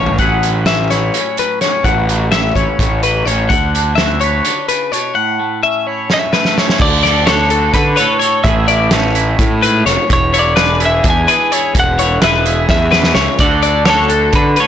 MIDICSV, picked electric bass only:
0, 0, Header, 1, 2, 480
1, 0, Start_track
1, 0, Tempo, 471698
1, 194, Time_signature, 7, 3, 24, 8
1, 14929, End_track
2, 0, Start_track
2, 0, Title_t, "Picked electric bass"
2, 0, Program_c, 0, 34
2, 0, Note_on_c, 0, 33, 82
2, 178, Note_off_c, 0, 33, 0
2, 196, Note_on_c, 0, 33, 76
2, 1115, Note_off_c, 0, 33, 0
2, 1874, Note_on_c, 0, 33, 83
2, 2555, Note_off_c, 0, 33, 0
2, 2601, Note_on_c, 0, 33, 69
2, 2708, Note_off_c, 0, 33, 0
2, 2841, Note_on_c, 0, 33, 82
2, 3278, Note_off_c, 0, 33, 0
2, 3320, Note_on_c, 0, 33, 85
2, 3537, Note_off_c, 0, 33, 0
2, 3565, Note_on_c, 0, 38, 78
2, 4480, Note_off_c, 0, 38, 0
2, 6919, Note_on_c, 0, 38, 84
2, 7836, Note_off_c, 0, 38, 0
2, 7881, Note_on_c, 0, 50, 88
2, 8096, Note_off_c, 0, 50, 0
2, 8593, Note_on_c, 0, 33, 84
2, 9032, Note_off_c, 0, 33, 0
2, 9071, Note_on_c, 0, 33, 86
2, 9511, Note_off_c, 0, 33, 0
2, 9554, Note_on_c, 0, 45, 91
2, 9992, Note_off_c, 0, 45, 0
2, 10037, Note_on_c, 0, 29, 81
2, 10144, Note_off_c, 0, 29, 0
2, 10286, Note_on_c, 0, 28, 80
2, 11198, Note_off_c, 0, 28, 0
2, 11238, Note_on_c, 0, 40, 91
2, 11453, Note_off_c, 0, 40, 0
2, 11953, Note_on_c, 0, 28, 82
2, 12392, Note_off_c, 0, 28, 0
2, 12443, Note_on_c, 0, 28, 82
2, 12877, Note_off_c, 0, 28, 0
2, 12915, Note_on_c, 0, 40, 85
2, 13353, Note_off_c, 0, 40, 0
2, 13392, Note_on_c, 0, 37, 79
2, 13501, Note_off_c, 0, 37, 0
2, 13630, Note_on_c, 0, 38, 73
2, 14551, Note_off_c, 0, 38, 0
2, 14588, Note_on_c, 0, 50, 85
2, 14809, Note_off_c, 0, 50, 0
2, 14929, End_track
0, 0, End_of_file